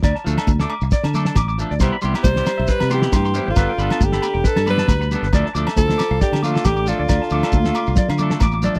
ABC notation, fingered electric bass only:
X:1
M:4/4
L:1/16
Q:"Swing 16ths" 1/4=136
K:Ddor
V:1 name="Fingered electric bass" clef=bass
D,, z D,, z D,,2 z C,, z D,3 A,,,3 D,, | C,, z C,, z C,,2 z B,,, z C,3 G,,3 _A,,, | G,,, z G,,, z G,,,2 z E,,, z G,,3 D,,3 G,,, | D,, z D,, z D,,2 z C,, z D,3 A,,,3 D,, |
D,, z D,, z D,,2 z C,, z D,3 A,,,3 z |]